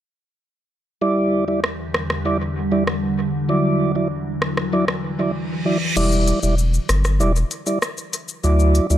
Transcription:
1.01 E2 D3 G3 E4 D5
1.48 G3 E4 D5
1.64 cross-stick
1.94 cross-stick
2.10 cross-stick
2.25 G3 E4 D5
2.72 G3 E4 D5
2.87 cross-stick
3.49 E3 F#3 E4 D5
3.95 F#3 E4 D5
4.42 cross-stick
4.57 cross-stick
4.73 F#3 E4 D5, reverse cymbal
4.88 cross-stick
5.19 F#3 E4 D5
5.65 F#3 E4 D5
5.96 E1 G3 E4 D5, crash, shaker
6.12 shaker
6.28 closed hi-hat, shaker
6.43 E1 G3 E4 D5, shaker
6.58 shaker
6.74 shaker
6.89 G1, cross-stick, closed hi-hat, shaker
7.05 cross-stick, shaker
7.20 E1 G3 E4 D5, shaker
7.36 shaker
7.51 closed hi-hat, shaker
7.66 G3 E4 D5, shaker
7.82 cross-stick, shaker
7.98 shaker
8.13 closed hi-hat, shaker
8.28 shaker
8.44 D2 F#3 E4 D5, shaker
8.59 shaker
8.75 closed hi-hat, shaker
8.90 D2 F#3 E4 D5, shaker

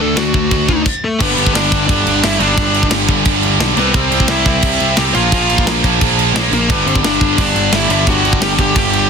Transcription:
0.00 D2 D3 A3 D4 A4
0.16 D2 D3 A3 D4 F#4, snare, crash
0.33 D2 D3 A3 D4, kick
0.50 D2 D3 A3 D4, kick, crash
0.68 D3 A3 D4, kick
0.86 kick, crash
1.05 A3 A4
1.20 G1 G2 D3 G3 B3 B4, kick, crash
1.37 G1 G2 D3 G3, crash
1.46 kick
1.54 G1 G2 D3 G3 D4 D5, snare, crash
1.72 G1 G2 D3 G3, kick, crash
1.88 G1 G2 D3 G3 D4 D5, kick, crash
2.06 G1 G2 D3 G3, crash
2.23 G1 G2 D3 G3 E4 E5, snare, crash
2.39 G1 G2 D3 G3 D4 D5, crash
2.57 G1 G2 D3 G3, kick, crash
2.74 G2 D3 G3, crash
2.83 kick
2.91 G1 G2 D3 G3, snare, crash
3.08 G1 G2 D3 G3, kick, crash
3.25 G1 G2 D3 G3, kick, crash
3.43 G2 D3 G3, crash
3.59 B1 G2 D3 G3, snare, crash
3.76 C2 C3 G3 B3 C4 B4, crash
3.94 C2 C3 G3 C4 C5, kick, crash
4.11 C2 C3 G3 C4, crash
4.20 kick
4.28 C2 C3 G3 C4 E4 E5, snare, crash
4.45 C2 C3 G3 C4 E4 E5, kick, crash
4.62 C2 C3 G3 C4, kick, crash
4.80 C2 C3 G3 C4, crash
4.97 C2 C3 G3 C4 G4 G5, snare, crash
5.14 A#1 A#2 F3 A#3 F4 F5, crash
5.32 A#1 A#2 F3 A#3, kick, crash
5.50 A#2 F3 A#3, crash
5.58 kick
5.65 A#1 A#2 F3 A#3, snare, crash
5.84 A#1 A#2 F3 A#3, kick, crash
6.01 A#1 A#2 F3 A#3, kick, crash
6.18 A#2 F3 A#3, crash
6.34 A#1 A#2 F3 A#3, snare, crash
6.52 A#1 A#2 F3 A#3 A#4, crash
6.69 G1 G2 D3 G3 B3 B4, kick, crash
6.86 G1 G2 D3 G3 C4 C5, crash
6.95 kick
7.04 G1 G2 D3 G3 D4 D5, snare, crash
7.21 G1 G2 D3 G3, kick, crash
7.38 G1 G2 D3 G3 D4 D5, kick, crash
7.55 G1 G2 D3 G3, crash
7.72 G1 G2 D3 G3 E4 E5, snare, crash
7.89 G1 G2 D3 G3 E4 E5, crash
8.06 G1 G2 D3 G3 F#4 F#5, kick, crash
8.24 G2 D3 G3, crash
8.33 kick
8.41 G1 G2 D3 G3 G4 G5, snare, crash
8.58 G1 G2 D3 G3 G4 G5, kick, crash
8.76 G1 G2 D3 G3 G4 G5, kick, crash
8.93 G2 D3 G3, crash

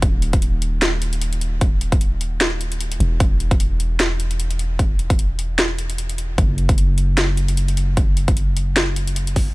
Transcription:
0.02 D#1, kick, closed hi-hat
0.22 closed hi-hat
0.33 kick, closed hi-hat
0.42 closed hi-hat
0.62 closed hi-hat
0.82 snare, closed hi-hat
1.02 closed hi-hat
1.13 closed hi-hat
1.22 closed hi-hat
1.33 closed hi-hat
1.41 closed hi-hat
1.61 kick, closed hi-hat
1.81 closed hi-hat
1.92 kick, closed hi-hat
2.01 closed hi-hat
2.21 closed hi-hat
2.41 snare, closed hi-hat
2.61 closed hi-hat
2.72 closed hi-hat
2.81 closed hi-hat
2.92 closed hi-hat
3.00 E1, closed hi-hat
3.20 kick, closed hi-hat
3.40 closed hi-hat
3.51 kick, closed hi-hat
3.60 closed hi-hat
3.80 closed hi-hat
4.00 snare, closed hi-hat
4.20 closed hi-hat
4.31 closed hi-hat
4.40 closed hi-hat
4.51 closed hi-hat
4.59 closed hi-hat
4.79 kick, closed hi-hat
4.99 closed hi-hat
5.10 kick, closed hi-hat
5.19 closed hi-hat
5.39 closed hi-hat
5.59 snare, closed hi-hat
5.79 closed hi-hat
5.90 closed hi-hat
5.98 closed hi-hat
6.09 closed hi-hat
6.18 closed hi-hat
6.38 F#1, kick, closed hi-hat
6.58 closed hi-hat
6.69 kick, closed hi-hat
6.78 closed hi-hat
6.98 closed hi-hat
7.18 snare, closed hi-hat
7.37 closed hi-hat
7.48 closed hi-hat
7.57 closed hi-hat
7.68 closed hi-hat
7.77 closed hi-hat
7.97 kick, closed hi-hat
8.17 closed hi-hat
8.28 kick, closed hi-hat
8.37 closed hi-hat
8.57 closed hi-hat
8.77 snare, closed hi-hat
8.96 closed hi-hat
9.07 closed hi-hat
9.16 closed hi-hat
9.27 closed hi-hat
9.36 kick, open hi-hat

